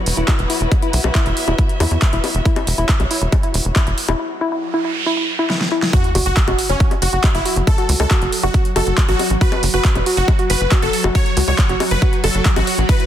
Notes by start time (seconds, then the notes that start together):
Already playing: F#3 B3 C#4 E4 F#4 B4 F#5
0.06 E1, open hi-hat
0.16 E1 E4 E5, closed hi-hat
0.28 E4, kick, clap, closed hi-hat, high bongo
0.39 E1, closed hi-hat
0.50 E4, open hi-hat
0.61 E1 E4, closed hi-hat
0.72 kick, closed hi-hat, high bongo
0.82 E4, closed hi-hat
0.93 B1 E4, open hi-hat
1.04 B1, high bongo
1.15 E4, kick, clap, closed hi-hat
1.26 E1 E4, closed hi-hat
1.37 open hi-hat
1.48 E1 E4, closed hi-hat, high bongo
1.59 E4, kick, closed hi-hat
1.69 closed hi-hat
1.80 E2 E4, open hi-hat, high bongo
1.91 E2 E4, closed hi-hat
2.02 kick, clap, closed hi-hat
2.13 E1 E4, closed hi-hat
2.24 E4, open hi-hat, high bongo
2.35 E1, closed hi-hat
2.45 E4, kick, closed hi-hat
2.50 C#5
2.56 E4, closed hi-hat, high bongo
2.67 E1, open hi-hat
2.78 E1 E4, closed hi-hat
2.89 kick, clap, closed hi-hat
3.00 B1, closed hi-hat, high bongo
3.11 E4, open hi-hat
3.22 E1 E4, closed hi-hat
3.32 kick, closed hi-hat, high bongo
3.43 E4, closed hi-hat
3.54 E1 E4, open hi-hat
3.65 E1, closed hi-hat
3.76 E4, kick, clap, closed hi-hat, high bongo
3.87 E1 E4, closed hi-hat
3.98 open hi-hat
4.09 E1 E4, high bongo
4.19 E4, noise sweep
4.41 E4
4.52 E4
4.74 E4
4.85 E4
5.06 E4
5.17 E4
5.39 E4
5.50 E4, snare
5.61 snare
5.72 E4
5.82 E4, snare
5.93 F#3 F#4, kick, closed hi-hat, sub drop
6.04 closed hi-hat
6.15 F#1 F#4, open hi-hat, high bongo
6.26 F#1 F#4, closed hi-hat
6.37 kick, clap, closed hi-hat
6.48 E1 F#4, closed hi-hat, high bongo
6.59 F#4, open hi-hat
6.69 F#1 C#4, closed hi-hat
6.80 F#4, kick, closed hi-hat
6.91 F#4, closed hi-hat, high bongo
7.02 F#1 F#4, open hi-hat
7.13 F#1 F#4, closed hi-hat
7.24 F#4, kick, clap, closed hi-hat, high bongo
7.35 F#1 E4, closed hi-hat
7.45 F#4, open hi-hat
7.56 F#1 F#4, closed hi-hat
7.67 A4, kick, closed hi-hat, high bongo
7.78 F#4, closed hi-hat
7.89 C#2 F#4, open hi-hat
8.00 C#2 A4, closed hi-hat, high bongo
8.11 F#4, kick, clap, closed hi-hat
8.22 F#1 F#4, closed hi-hat
8.32 open hi-hat
8.43 F#1 F#4, high bongo
8.54 F#4, kick, closed hi-hat
8.65 closed hi-hat
8.76 F#1 F#4 A4, open hi-hat, high bongo
8.87 F#1 F#4, closed hi-hat
8.98 kick, clap, closed hi-hat
9.09 A1 F#4, closed hi-hat
9.19 F#4, open hi-hat, high bongo
9.30 A1, closed hi-hat
9.41 F#4 B4, kick, closed hi-hat
9.52 F#4, closed hi-hat, high bongo
9.63 F#1, open hi-hat
9.74 F#1 F#4 B4, closed hi-hat
9.85 kick, clap, closed hi-hat
9.96 E1, closed hi-hat, high bongo
10.06 F#4, open hi-hat
10.17 F#1 F#4, closed hi-hat
10.28 kick, closed hi-hat, high bongo
10.39 F#4, closed hi-hat
10.50 F#1 F#4 B4, open hi-hat
10.61 F#1
10.72 F#4, kick, clap, closed hi-hat, high bongo
10.82 F#1 F#4 A4, closed hi-hat
10.93 open hi-hat
11.04 F#1 F#4, high bongo
11.15 F#4 C#5, kick, closed hi-hat
11.26 closed hi-hat
11.37 C#2 F#4, open hi-hat
11.48 C#2 F#4 C#5, closed hi-hat, high bongo
11.59 kick, clap, closed hi-hat
11.69 F#1 F#4, closed hi-hat
11.80 F#4, open hi-hat, high bongo
11.91 F#1 B4, closed hi-hat
12.02 F#4, kick, closed hi-hat
12.13 F#4, closed hi-hat
12.24 F#1 F#4 A4, open hi-hat, high bongo
12.35 F#1 F#5
12.45 F#5, kick, clap, closed hi-hat
12.56 A1 F#4, closed hi-hat, high bongo
12.67 C#5, open hi-hat
12.78 A1 F#4, closed hi-hat
12.89 E4 B4, kick, closed hi-hat
13.00 E4, closed hi-hat